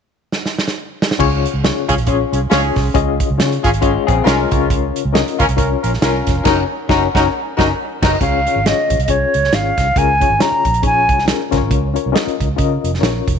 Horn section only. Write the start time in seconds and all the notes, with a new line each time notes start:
1.88 C#4 F4 G#4
2.06 C#4 F4 G#4
2.31 C#4 F4 G#4
2.50 C#4 F4 G#4
3.64 C#4 F4 G#4
3.80 C#4 F4 G#4
4.07 C#4 F4 G#4
4.24 C#4 F4 A#4
5.39 C#4 F4 A#4
5.56 C#4 F4 A#4
5.82 C#4 F4 A#4
6.02 C#4 F4 A#4
6.45 D#4 F#4 A#4
6.89 D#4 F#4 A#4
7.15 D#4 F#4 A#4
7.57 D#4 F#4 A#4
8.02 D#4 F#4 A#4